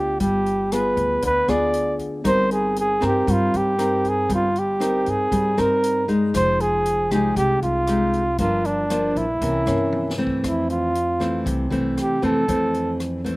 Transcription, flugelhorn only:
0, 0, Header, 1, 2, 480
1, 0, Start_track
1, 0, Tempo, 511945
1, 186, Time_signature, 4, 2, 24, 8
1, 12530, End_track
2, 0, Start_track
2, 0, Title_t, "Flugelhorn"
2, 0, Program_c, 0, 56
2, 0, Note_on_c, 0, 67, 84
2, 191, Note_off_c, 0, 67, 0
2, 196, Note_on_c, 0, 67, 81
2, 684, Note_on_c, 0, 71, 87
2, 698, Note_off_c, 0, 67, 0
2, 1155, Note_off_c, 0, 71, 0
2, 1174, Note_on_c, 0, 71, 93
2, 1402, Note_on_c, 0, 74, 88
2, 1416, Note_off_c, 0, 71, 0
2, 1874, Note_off_c, 0, 74, 0
2, 2129, Note_on_c, 0, 72, 104
2, 2341, Note_off_c, 0, 72, 0
2, 2367, Note_on_c, 0, 68, 80
2, 2580, Note_off_c, 0, 68, 0
2, 2626, Note_on_c, 0, 68, 90
2, 2831, Note_off_c, 0, 68, 0
2, 2870, Note_on_c, 0, 67, 79
2, 3113, Note_on_c, 0, 65, 83
2, 3127, Note_off_c, 0, 67, 0
2, 3345, Note_on_c, 0, 67, 86
2, 3359, Note_off_c, 0, 65, 0
2, 3833, Note_on_c, 0, 68, 84
2, 3847, Note_off_c, 0, 67, 0
2, 4049, Note_off_c, 0, 68, 0
2, 4073, Note_on_c, 0, 65, 83
2, 4305, Note_on_c, 0, 67, 78
2, 4319, Note_off_c, 0, 65, 0
2, 4778, Note_on_c, 0, 68, 77
2, 4792, Note_off_c, 0, 67, 0
2, 5257, Note_on_c, 0, 70, 77
2, 5271, Note_off_c, 0, 68, 0
2, 5721, Note_off_c, 0, 70, 0
2, 5964, Note_on_c, 0, 72, 100
2, 6197, Note_on_c, 0, 68, 88
2, 6211, Note_off_c, 0, 72, 0
2, 6671, Note_off_c, 0, 68, 0
2, 6684, Note_on_c, 0, 68, 82
2, 6898, Note_off_c, 0, 68, 0
2, 6911, Note_on_c, 0, 67, 96
2, 7131, Note_off_c, 0, 67, 0
2, 7149, Note_on_c, 0, 65, 88
2, 7830, Note_off_c, 0, 65, 0
2, 7870, Note_on_c, 0, 65, 88
2, 8118, Note_on_c, 0, 62, 78
2, 8132, Note_off_c, 0, 65, 0
2, 8602, Note_on_c, 0, 64, 78
2, 8616, Note_off_c, 0, 62, 0
2, 9554, Note_off_c, 0, 64, 0
2, 9821, Note_on_c, 0, 64, 72
2, 10028, Note_off_c, 0, 64, 0
2, 10039, Note_on_c, 0, 65, 77
2, 10715, Note_off_c, 0, 65, 0
2, 11261, Note_on_c, 0, 67, 81
2, 11468, Note_off_c, 0, 67, 0
2, 11483, Note_on_c, 0, 69, 83
2, 12158, Note_off_c, 0, 69, 0
2, 12530, End_track
0, 0, End_of_file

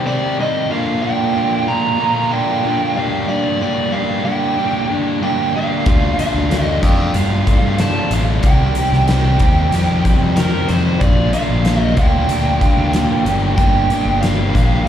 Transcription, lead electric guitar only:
0, 0, Header, 1, 2, 480
1, 0, Start_track
1, 0, Key_signature, -2, "minor"
1, 0, Tempo, 643777
1, 522, Time_signature, 4, 2, 24, 8
1, 11097, End_track
2, 0, Start_track
2, 0, Title_t, "Lead electric guitar"
2, 0, Program_c, 0, 29
2, 51, Note_on_c, 0, 74, 64
2, 270, Note_off_c, 0, 74, 0
2, 302, Note_on_c, 0, 75, 75
2, 516, Note_off_c, 0, 75, 0
2, 531, Note_on_c, 0, 77, 84
2, 750, Note_off_c, 0, 77, 0
2, 767, Note_on_c, 0, 79, 88
2, 1215, Note_off_c, 0, 79, 0
2, 1255, Note_on_c, 0, 82, 89
2, 1728, Note_on_c, 0, 79, 92
2, 1743, Note_off_c, 0, 82, 0
2, 2205, Note_off_c, 0, 79, 0
2, 2208, Note_on_c, 0, 77, 70
2, 2429, Note_off_c, 0, 77, 0
2, 2447, Note_on_c, 0, 74, 74
2, 2690, Note_off_c, 0, 74, 0
2, 2698, Note_on_c, 0, 74, 76
2, 2925, Note_on_c, 0, 77, 75
2, 2938, Note_off_c, 0, 74, 0
2, 3147, Note_off_c, 0, 77, 0
2, 3169, Note_on_c, 0, 79, 71
2, 3617, Note_off_c, 0, 79, 0
2, 3901, Note_on_c, 0, 79, 78
2, 4116, Note_off_c, 0, 79, 0
2, 4144, Note_on_c, 0, 77, 73
2, 4610, Note_off_c, 0, 77, 0
2, 4619, Note_on_c, 0, 77, 87
2, 4955, Note_off_c, 0, 77, 0
2, 4955, Note_on_c, 0, 75, 87
2, 5062, Note_off_c, 0, 75, 0
2, 5104, Note_on_c, 0, 79, 73
2, 5335, Note_off_c, 0, 79, 0
2, 5338, Note_on_c, 0, 77, 86
2, 5816, Note_on_c, 0, 81, 93
2, 5826, Note_off_c, 0, 77, 0
2, 6035, Note_off_c, 0, 81, 0
2, 6057, Note_on_c, 0, 77, 79
2, 6120, Note_off_c, 0, 77, 0
2, 6283, Note_on_c, 0, 79, 89
2, 6735, Note_off_c, 0, 79, 0
2, 6772, Note_on_c, 0, 79, 85
2, 7727, Note_on_c, 0, 70, 78
2, 7758, Note_off_c, 0, 79, 0
2, 7950, Note_off_c, 0, 70, 0
2, 7964, Note_on_c, 0, 72, 75
2, 8200, Note_off_c, 0, 72, 0
2, 8203, Note_on_c, 0, 74, 77
2, 8428, Note_off_c, 0, 74, 0
2, 8448, Note_on_c, 0, 77, 77
2, 8820, Note_off_c, 0, 77, 0
2, 8820, Note_on_c, 0, 75, 77
2, 8911, Note_off_c, 0, 75, 0
2, 8914, Note_on_c, 0, 79, 79
2, 10090, Note_off_c, 0, 79, 0
2, 10113, Note_on_c, 0, 79, 82
2, 10597, Note_off_c, 0, 79, 0
2, 10600, Note_on_c, 0, 77, 75
2, 11073, Note_off_c, 0, 77, 0
2, 11097, End_track
0, 0, End_of_file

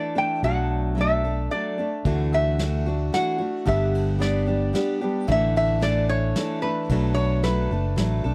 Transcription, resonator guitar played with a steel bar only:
0, 0, Header, 1, 2, 480
1, 0, Start_track
1, 0, Tempo, 539084
1, 387, Time_signature, 3, 2, 24, 8
1, 7430, End_track
2, 0, Start_track
2, 0, Title_t, "Resonator guitar played with a steel bar"
2, 0, Program_c, 0, 25
2, 0, Note_on_c, 0, 74, 69
2, 156, Note_off_c, 0, 74, 0
2, 161, Note_on_c, 0, 79, 74
2, 389, Note_off_c, 0, 79, 0
2, 393, Note_on_c, 0, 78, 77
2, 885, Note_off_c, 0, 78, 0
2, 896, Note_on_c, 0, 76, 70
2, 1343, Note_off_c, 0, 76, 0
2, 1347, Note_on_c, 0, 74, 61
2, 1683, Note_off_c, 0, 74, 0
2, 2085, Note_on_c, 0, 76, 86
2, 2791, Note_off_c, 0, 76, 0
2, 2794, Note_on_c, 0, 78, 86
2, 3276, Note_off_c, 0, 78, 0
2, 3279, Note_on_c, 0, 76, 76
2, 3751, Note_on_c, 0, 74, 60
2, 3770, Note_off_c, 0, 76, 0
2, 4436, Note_off_c, 0, 74, 0
2, 4733, Note_on_c, 0, 76, 86
2, 4950, Note_off_c, 0, 76, 0
2, 4961, Note_on_c, 0, 76, 88
2, 5187, Note_on_c, 0, 74, 83
2, 5203, Note_off_c, 0, 76, 0
2, 5422, Note_off_c, 0, 74, 0
2, 5426, Note_on_c, 0, 73, 80
2, 5891, Note_off_c, 0, 73, 0
2, 5894, Note_on_c, 0, 71, 64
2, 6361, Note_on_c, 0, 73, 80
2, 6396, Note_off_c, 0, 71, 0
2, 6621, Note_on_c, 0, 71, 62
2, 6622, Note_off_c, 0, 73, 0
2, 7306, Note_off_c, 0, 71, 0
2, 7430, End_track
0, 0, End_of_file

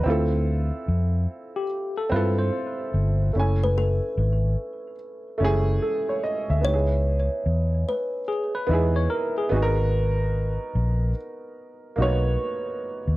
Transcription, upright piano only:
0, 0, Header, 1, 2, 480
1, 0, Start_track
1, 0, Tempo, 821918
1, 34, Time_signature, 4, 2, 24, 8
1, 7690, End_track
2, 0, Start_track
2, 0, Title_t, "Upright piano"
2, 0, Program_c, 0, 0
2, 0, Control_c, 0, 64, 127
2, 0, Note_on_c, 0, 71, 73
2, 21, Note_on_c, 0, 60, 82
2, 33, Note_on_c, 0, 64, 77
2, 43, Control_c, 0, 64, 0
2, 46, Note_on_c, 0, 65, 73
2, 58, Note_on_c, 0, 69, 85
2, 137, Control_c, 0, 64, 127
2, 183, Note_off_c, 0, 71, 0
2, 952, Note_off_c, 0, 60, 0
2, 958, Note_off_c, 0, 64, 0
2, 964, Note_off_c, 0, 65, 0
2, 971, Note_off_c, 0, 69, 0
2, 1222, Note_on_c, 0, 60, 83
2, 1235, Note_on_c, 0, 64, 75
2, 1247, Note_on_c, 0, 65, 79
2, 1261, Note_on_c, 0, 69, 97
2, 1922, Note_off_c, 0, 60, 0
2, 1928, Note_off_c, 0, 64, 0
2, 1934, Note_off_c, 0, 65, 0
2, 1941, Note_off_c, 0, 69, 0
2, 1944, Note_on_c, 0, 57, 67
2, 1957, Note_on_c, 0, 61, 62
2, 1961, Control_c, 0, 64, 0
2, 1969, Note_on_c, 0, 64, 59
2, 1982, Note_on_c, 0, 80, 78
2, 2062, Control_c, 0, 64, 127
2, 2874, Note_off_c, 0, 57, 0
2, 2880, Note_off_c, 0, 61, 0
2, 2886, Note_off_c, 0, 64, 0
2, 2893, Note_off_c, 0, 80, 0
2, 3141, Note_on_c, 0, 57, 85
2, 3155, Note_on_c, 0, 61, 80
2, 3166, Note_on_c, 0, 64, 77
2, 3180, Note_on_c, 0, 68, 103
2, 3401, Note_on_c, 0, 69, 65
2, 3407, Note_off_c, 0, 68, 0
2, 3547, Note_off_c, 0, 69, 0
2, 3557, Note_on_c, 0, 73, 68
2, 3633, Note_off_c, 0, 73, 0
2, 3641, Note_on_c, 0, 75, 75
2, 3787, Note_off_c, 0, 75, 0
2, 3797, Note_on_c, 0, 76, 67
2, 3841, Note_off_c, 0, 57, 0
2, 3848, Note_off_c, 0, 61, 0
2, 3854, Note_off_c, 0, 64, 0
2, 3861, Note_on_c, 0, 59, 70
2, 3874, Note_on_c, 0, 63, 61
2, 3882, Control_c, 0, 64, 0
2, 3885, Note_on_c, 0, 64, 61
2, 3898, Note_on_c, 0, 67, 58
2, 3936, Note_off_c, 0, 67, 0
2, 3936, Note_on_c, 0, 68, 74
2, 3995, Control_c, 0, 64, 127
2, 4022, Note_off_c, 0, 76, 0
2, 4792, Note_off_c, 0, 59, 0
2, 4799, Note_off_c, 0, 63, 0
2, 4804, Note_off_c, 0, 64, 0
2, 4830, Note_off_c, 0, 68, 0
2, 5062, Note_on_c, 0, 59, 85
2, 5076, Note_on_c, 0, 63, 76
2, 5088, Note_on_c, 0, 64, 86
2, 5101, Note_on_c, 0, 68, 89
2, 5535, Note_off_c, 0, 59, 0
2, 5544, Note_on_c, 0, 59, 92
2, 5548, Note_off_c, 0, 63, 0
2, 5557, Note_on_c, 0, 63, 86
2, 5561, Note_off_c, 0, 64, 0
2, 5561, Control_c, 0, 64, 0
2, 5567, Note_off_c, 0, 68, 0
2, 5569, Note_on_c, 0, 66, 84
2, 5582, Note_on_c, 0, 68, 79
2, 5618, Note_off_c, 0, 68, 0
2, 5620, Note_on_c, 0, 70, 104
2, 5675, Control_c, 0, 64, 127
2, 6474, Note_off_c, 0, 59, 0
2, 6480, Note_off_c, 0, 63, 0
2, 6486, Note_off_c, 0, 66, 0
2, 6512, Note_off_c, 0, 70, 0
2, 6984, Note_on_c, 0, 58, 72
2, 6996, Note_on_c, 0, 63, 76
2, 7008, Note_on_c, 0, 66, 78
2, 7020, Note_on_c, 0, 73, 94
2, 7021, Note_on_c, 0, 59, 86
2, 7039, Note_off_c, 0, 58, 0
2, 7689, Note_off_c, 0, 63, 0
2, 7690, Note_off_c, 0, 59, 0
2, 7690, Note_off_c, 0, 66, 0
2, 7690, Note_off_c, 0, 73, 0
2, 7690, End_track
0, 0, End_of_file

